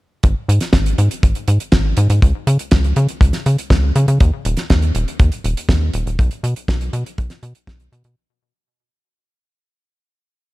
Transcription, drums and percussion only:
0.23 kick, closed hi-hat
0.49 closed hi-hat
0.61 snare, closed hi-hat
0.73 kick, snare, closed hi-hat
0.86 closed hi-hat
0.98 closed hi-hat
1.11 closed hi-hat
1.23 kick, closed hi-hat
1.35 closed hi-hat
1.48 closed hi-hat
1.60 closed hi-hat
1.72 kick, snare, closed hi-hat
1.97 closed hi-hat
2.10 closed hi-hat
2.22 kick, closed hi-hat
2.47 closed hi-hat
2.59 closed hi-hat
2.71 kick, snare, closed hi-hat
2.84 closed hi-hat
2.96 closed hi-hat
3.09 closed hi-hat
3.21 kick, closed hi-hat
3.33 snare, closed hi-hat
3.46 closed hi-hat
3.58 closed hi-hat
3.70 kick, snare, closed hi-hat
3.96 closed hi-hat
4.08 closed hi-hat
4.20 kick, closed hi-hat
4.45 closed hi-hat
4.57 snare, closed hi-hat
4.70 kick, snare, closed hi-hat
4.82 closed hi-hat
4.95 closed hi-hat
5.08 closed hi-hat
5.19 kick, closed hi-hat
5.32 closed hi-hat
5.44 closed hi-hat
5.57 closed hi-hat
5.69 kick, snare, closed hi-hat
5.93 closed hi-hat
6.07 closed hi-hat
6.19 kick, closed hi-hat
6.31 closed hi-hat
6.44 closed hi-hat
6.56 closed hi-hat
6.68 kick, snare, closed hi-hat
6.81 closed hi-hat
6.93 closed hi-hat
7.06 closed hi-hat
7.18 kick, closed hi-hat
7.30 snare, closed hi-hat
7.43 closed hi-hat
7.55 closed hi-hat
7.67 kick, snare, closed hi-hat
7.80 closed hi-hat
7.93 closed hi-hat
8.04 closed hi-hat

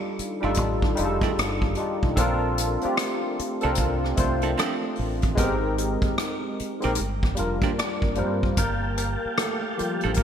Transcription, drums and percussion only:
0.19 closed hi-hat
0.54 kick, closed hi-hat
0.82 kick, cross-stick
0.97 closed hi-hat
1.21 kick, cross-stick, closed hi-hat
1.39 cross-stick, closed hi-hat
1.62 kick
1.75 closed hi-hat
2.03 kick
2.17 kick, closed hi-hat
2.58 closed hi-hat
2.81 closed hi-hat
2.97 cross-stick, closed hi-hat
3.39 closed hi-hat
3.61 closed hi-hat
3.75 kick, closed hi-hat
4.04 cross-stick
4.17 kick, closed hi-hat
4.42 closed hi-hat
4.59 cross-stick, closed hi-hat
4.96 open hi-hat
5.22 kick, closed hi-hat
5.38 kick, closed hi-hat
5.78 closed hi-hat
6.02 kick, closed hi-hat
6.18 cross-stick, closed hi-hat
6.60 closed hi-hat
6.82 closed hi-hat
6.95 closed hi-hat
7.23 kick, cross-stick
7.37 closed hi-hat
7.61 kick, cross-stick, closed hi-hat
7.79 cross-stick, closed hi-hat
8.02 kick
8.15 closed hi-hat
8.43 kick
8.57 kick, closed hi-hat
8.98 closed hi-hat
9.38 cross-stick, closed hi-hat
9.79 closed hi-hat
10.01 closed hi-hat
10.14 kick, closed hi-hat

